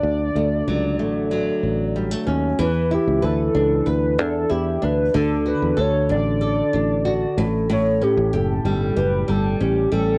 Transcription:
<<
  \new Staff \with { instrumentName = "Soft synth lead" } { \time 4/4 \key d \major \tempo 4 = 94 d''2. r4 | b'8 g'8 a'4 b'8 a'8 g'8 b'8 | a'8 b'8 cis''8 d''2 r8 | cis''8 g'8 a'4 b'8 a'8 g'8 a'8 | }
  \new Staff \with { instrumentName = "Nylon-string guitar" } { \time 4/4 \key d \major r8 a8 fis8 a8 fis4 g16 a16 cis'8 | e8 e'8 b'8 d'8 b'8 d'8 e'8 d'8 | d8 fis'8 a'8 d'8 a'8 d'8 fis'8 a,8 | a,8 cis'8 g'8 g8 g'8 g8 cis'8 g8 | }
  \new Staff \with { instrumentName = "Fingered electric bass" } { \clef bass \time 4/4 \key d \major d,8 d,8 cis,8 a,,4 a,,4 ees,8 | e,8. cis,16 d,8 cis,8 d,8 e,8 e,8 d,8 | d,8. e,16 d,8 a,,4 a,,4 a,,8~ | a,,8. a,,16 fis,,8 g,,8 fis,,8 g,,8 a,,8 a,,8 | }
>>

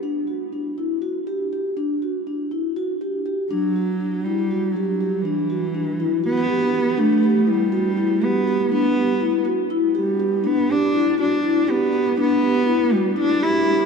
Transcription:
<<
  \new Staff \with { instrumentName = "Vibraphone" } { \time 7/8 \key e \minor \tempo 4 = 121 d'8 fis'8 d'8 e'8 fis'8 g'8 g'8 | d'8 fis'8 d'8 e'8 fis'8 g'8 g'8 | d'8 fis'8 d'8 e'8 fis'8 g'8 g'8 | d'8 fis'8 d'8 e'8 fis'8 g'8 g'8 |
d'8 g'8 e'8 fis'8 e'8 g'8 g'8 | d'8 g'8 e'8 fis'8 e'8 g'8 g'8 | d'8 g'8 e'8 fis'8 e'8 g'8 g'8 | d'8 g'8 e'8 fis'8 e'8 g'8 g'8 | }
  \new Staff \with { instrumentName = "Cello" } { \time 7/8 \key e \minor r2. r8 | r2. r8 | fis4. g4 fis4 | e2 b4. |
a4 g4. b4 | b4. r4 g4 | b8 d'4 d'4 b4 | b4. g8 d'8 e'4 | }
>>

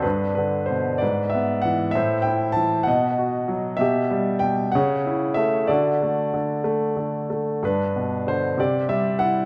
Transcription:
<<
  \new Staff \with { instrumentName = "Grand piano" } { \time 6/8 \key g \major \tempo 4. = 64 << { b'8 b'8 c''8 d''8 e''8 fis''8 | e''8 g''8 a''8 fis''4 r8 | e''4 g''8 fis''4 e''8 | d''4 r2 |
b'4 c''8 d''8 e''8 fis''8 | } \\ { d'4. b'4. | c''4. dis''4. | g'4. cis''4. | fis'4. r4. |
d'4. g'4. | } >> }
  \new Staff \with { instrumentName = "Grand piano" } { \clef bass \time 6/8 \key g \major g,8 d8 b,8 gis,8 b8 e8 | a,8 e'8 e8 b,8 fis'8 fis8 | b,8 g8 b,8 cis8 e'8 a8 | d8 a8 d8 a8 d8 a8 |
g,8 b,8 d8 c8 g8 e'8 | }
>>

